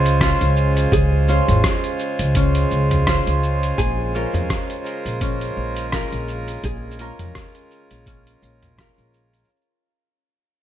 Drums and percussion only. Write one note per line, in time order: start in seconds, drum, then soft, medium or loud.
0.06 closed hi-hat soft
0.06 cabasa soft
0.21 kick loud
0.21 cross-stick medium
0.21 closed hi-hat medium
0.21 cabasa soft
0.41 closed hi-hat soft
0.57 cabasa medium
0.77 closed hi-hat soft
0.77 cabasa soft
0.92 kick loud
0.92 closed hi-hat soft
0.92 cabasa soft
1.28 cabasa medium
1.49 closed hi-hat soft
1.49 mid tom medium
1.49 cabasa soft
1.64 kick medium
1.64 cross-stick medium
1.64 closed hi-hat soft
1.64 cabasa soft
1.84 closed hi-hat soft
1.99 cabasa medium
2.19 closed hi-hat soft
2.19 cabasa soft
2.35 kick loud
2.35 closed hi-hat medium
2.35 cabasa soft
2.55 closed hi-hat soft
2.71 cabasa medium
2.91 closed hi-hat soft
2.91 mid tom medium
2.91 cabasa soft
3.07 kick loud
3.07 cross-stick loud
3.07 closed hi-hat medium
3.07 cabasa soft
3.27 closed hi-hat soft
3.43 cabasa medium
3.63 closed hi-hat soft
3.63 cabasa soft
3.78 kick loud
3.78 closed hi-hat medium
3.78 cabasa soft
4.15 cabasa medium
4.34 closed hi-hat soft
4.34 mid tom medium
4.34 cabasa soft
4.50 kick loud
4.50 cross-stick medium
4.50 closed hi-hat medium
4.50 cabasa soft
4.70 closed hi-hat soft
4.86 cabasa medium
5.06 closed hi-hat soft
5.06 cabasa soft
5.21 kick medium
5.21 closed hi-hat medium
5.21 cabasa soft
5.41 closed hi-hat soft
5.77 closed hi-hat soft
5.77 cabasa medium
5.92 kick loud
5.92 cross-stick medium
5.92 closed hi-hat medium
5.92 cabasa soft
6.12 closed hi-hat soft
6.28 cabasa medium
6.48 closed hi-hat soft
6.48 cabasa soft
6.64 kick loud
6.64 closed hi-hat medium
6.64 cabasa soft
6.91 cabasa medium
6.99 closed hi-hat soft
7.19 closed hi-hat soft
7.19 mid tom medium
7.19 cabasa soft
7.35 kick loud
7.35 cross-stick loud
7.35 closed hi-hat medium
7.35 cabasa soft
7.55 closed hi-hat soft
7.55 cabasa soft
7.71 cabasa medium
7.91 closed hi-hat soft
7.91 cabasa soft
8.06 kick medium
8.06 closed hi-hat medium
8.06 cabasa soft
8.27 closed hi-hat soft
8.27 cabasa soft
8.43 cabasa medium
8.63 closed hi-hat soft
8.63 mid tom medium
8.63 cabasa soft
8.78 kick loud
8.78 cross-stick loud
8.78 closed hi-hat medium
8.78 cabasa soft
8.98 closed hi-hat soft
8.98 cabasa soft
9.14 cabasa medium
9.34 closed hi-hat soft
9.34 cabasa soft
9.37 cabasa soft
9.44 cabasa soft
9.50 cabasa soft
9.56 cabasa soft
9.61 cabasa soft